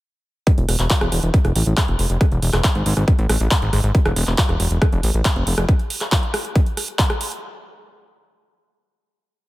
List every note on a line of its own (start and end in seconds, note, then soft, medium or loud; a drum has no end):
0.47 kick loud
0.47 closed hi-hat medium
0.58 0.65 E1 medium
0.58 closed hi-hat soft
0.69 0.76 E1 loud
0.69 cross-stick soft
0.69 open hi-hat loud
0.79 0.87 E1 medium
0.79 clap soft
0.79 closed hi-hat medium
0.90 kick loud
0.90 clap loud
0.90 closed hi-hat medium
1.01 1.09 E1 medium
1.01 cross-stick medium
1.01 closed hi-hat soft
1.12 1.20 E1 loud
1.12 open hi-hat medium
1.23 1.31 E1 medium
1.23 closed hi-hat medium
1.34 kick loud
1.34 closed hi-hat medium
1.45 1.52 F1 medium
1.45 cross-stick soft
1.45 closed hi-hat soft
1.56 1.63 A1 loud
1.56 open hi-hat loud
1.66 1.74 A1 medium
1.66 closed hi-hat medium
1.77 kick loud
1.77 cross-stick medium
1.77 clap loud
1.77 closed hi-hat medium
1.88 1.96 F1 medium
1.88 closed hi-hat soft
1.99 2.07 F1 loud
1.99 open hi-hat medium
2.10 2.18 F1 medium
2.10 closed hi-hat medium
2.21 kick loud
2.21 cross-stick soft
2.21 closed hi-hat medium
2.32 2.39 E1 medium
2.32 closed hi-hat soft
2.42 2.50 E1 loud
2.42 open hi-hat loud
2.53 2.61 E1 medium
2.53 cross-stick medium
2.53 clap soft
2.53 closed hi-hat medium
2.64 kick loud
2.64 clap loud
2.64 closed hi-hat medium
2.75 2.83 G#1 medium
2.75 closed hi-hat soft
2.86 2.94 G#1 loud
2.86 open hi-hat loud
2.97 3.05 G#1 medium
2.97 cross-stick soft
2.97 closed hi-hat medium
3.08 kick loud
3.08 closed hi-hat medium
3.19 3.26 A1 medium
3.19 closed hi-hat soft
3.29 3.37 A1 loud
3.29 cross-stick medium
3.29 open hi-hat loud
3.40 3.48 A1 medium
3.40 closed hi-hat medium
3.51 kick loud
3.51 clap loud
3.51 closed hi-hat medium
3.62 3.70 G#1 medium
3.62 closed hi-hat soft
3.73 3.81 G#1 loud
3.73 cross-stick soft
3.73 open hi-hat loud
3.84 3.92 G#1 medium
3.84 closed hi-hat medium
3.95 kick loud
3.95 closed hi-hat medium
4.06 4.13 E1 medium
4.06 cross-stick medium
4.06 closed hi-hat soft
4.16 4.24 E1 loud
4.16 open hi-hat loud
4.27 4.35 E1 medium
4.27 clap soft
4.27 closed hi-hat medium
4.38 kick loud
4.38 clap loud
4.38 closed hi-hat medium
4.49 4.57 E1 medium
4.49 cross-stick soft
4.49 closed hi-hat soft
4.60 4.68 E1 loud
4.60 open hi-hat loud
4.71 4.79 E1 medium
4.71 closed hi-hat medium
4.82 kick loud
4.82 cross-stick medium
4.82 closed hi-hat medium
4.92 5.00 F1 medium
4.92 closed hi-hat soft
5.03 5.11 A1 loud
5.03 open hi-hat loud
5.14 5.22 A1 medium
5.14 closed hi-hat medium
5.25 kick loud
5.25 cross-stick soft
5.25 clap loud
5.25 closed hi-hat medium
5.36 5.44 F1 medium
5.36 closed hi-hat soft
5.47 5.55 F1 loud
5.47 open hi-hat loud
5.58 5.65 F1 medium
5.58 cross-stick medium
5.58 closed hi-hat medium
5.69 kick loud
5.69 closed hi-hat medium
5.79 closed hi-hat soft
5.90 open hi-hat loud
6.01 cross-stick soft
6.01 clap soft
6.01 closed hi-hat soft
6.12 kick loud
6.12 clap loud
6.12 closed hi-hat medium
6.23 closed hi-hat soft
6.34 cross-stick medium
6.34 open hi-hat loud
6.45 closed hi-hat medium
6.56 kick loud
6.56 closed hi-hat medium
6.66 closed hi-hat soft
6.77 cross-stick soft
6.77 open hi-hat loud
6.88 closed hi-hat medium
6.99 kick loud
6.99 clap loud
6.99 closed hi-hat medium
7.10 cross-stick medium
7.10 closed hi-hat soft
7.21 open hi-hat loud
7.32 closed hi-hat medium